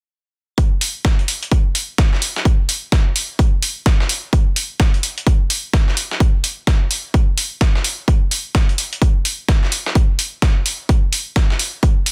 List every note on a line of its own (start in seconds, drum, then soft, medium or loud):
0.58 kick loud
0.58 closed hi-hat medium
0.81 closed hi-hat medium
0.81 open hi-hat medium
1.05 kick loud
1.05 snare loud
1.05 closed hi-hat medium
1.19 closed hi-hat soft
1.28 closed hi-hat medium
1.28 open hi-hat medium
1.43 closed hi-hat soft
1.52 kick loud
1.52 closed hi-hat medium
1.75 closed hi-hat medium
1.75 open hi-hat medium
1.98 kick loud
1.98 snare loud
1.98 closed hi-hat medium
2.13 snare soft
2.22 closed hi-hat medium
2.22 open hi-hat medium
2.36 snare soft
2.45 kick loud
2.45 closed hi-hat medium
2.69 closed hi-hat medium
2.69 open hi-hat loud
2.92 kick loud
2.92 snare loud
2.92 closed hi-hat medium
3.16 closed hi-hat medium
3.16 open hi-hat medium
3.39 kick loud
3.39 closed hi-hat medium
3.62 closed hi-hat medium
3.62 open hi-hat loud
3.86 kick loud
3.86 snare loud
3.86 closed hi-hat medium
4.00 snare soft
4.09 closed hi-hat medium
4.09 open hi-hat medium
4.33 kick loud
4.33 closed hi-hat medium
4.56 closed hi-hat medium
4.56 open hi-hat loud
4.80 kick loud
4.80 snare loud
4.80 closed hi-hat medium
4.94 closed hi-hat soft
5.03 closed hi-hat medium
5.03 open hi-hat medium
5.18 closed hi-hat soft
5.27 kick loud
5.27 closed hi-hat medium
5.50 closed hi-hat medium
5.50 open hi-hat loud
5.73 kick loud
5.73 snare loud
5.73 closed hi-hat medium
5.88 snare soft
5.97 closed hi-hat medium
5.97 open hi-hat medium
6.11 snare soft
6.20 kick loud
6.20 closed hi-hat medium
6.44 closed hi-hat medium
6.44 open hi-hat loud
6.67 kick loud
6.67 snare loud
6.67 closed hi-hat medium
6.91 closed hi-hat medium
6.91 open hi-hat medium
7.14 kick loud
7.14 closed hi-hat medium
7.38 closed hi-hat medium
7.38 open hi-hat loud
7.61 kick loud
7.61 snare loud
7.61 closed hi-hat medium
7.75 snare soft
7.84 closed hi-hat medium
7.84 open hi-hat medium
8.08 kick loud
8.08 closed hi-hat medium
8.31 closed hi-hat medium
8.31 open hi-hat medium
8.55 kick loud
8.55 snare loud
8.55 closed hi-hat medium
8.69 closed hi-hat soft
8.78 closed hi-hat medium
8.78 open hi-hat medium
8.93 closed hi-hat soft
9.02 kick loud
9.02 closed hi-hat medium
9.25 closed hi-hat medium
9.25 open hi-hat medium
9.48 kick loud
9.48 snare loud
9.48 closed hi-hat medium
9.63 snare soft
9.72 closed hi-hat medium
9.72 open hi-hat medium
9.86 snare soft
9.95 kick loud
9.95 closed hi-hat medium
10.19 closed hi-hat medium
10.19 open hi-hat medium
10.42 kick loud
10.42 snare loud
10.42 closed hi-hat medium
10.66 closed hi-hat medium
10.66 open hi-hat medium
10.89 kick loud
10.89 closed hi-hat medium
11.13 closed hi-hat medium
11.13 open hi-hat medium
11.36 kick loud
11.36 snare loud
11.36 closed hi-hat medium
11.50 snare soft
11.59 closed hi-hat medium
11.59 open hi-hat medium
11.83 kick loud
11.83 closed hi-hat medium
12.06 closed hi-hat medium
12.06 open hi-hat medium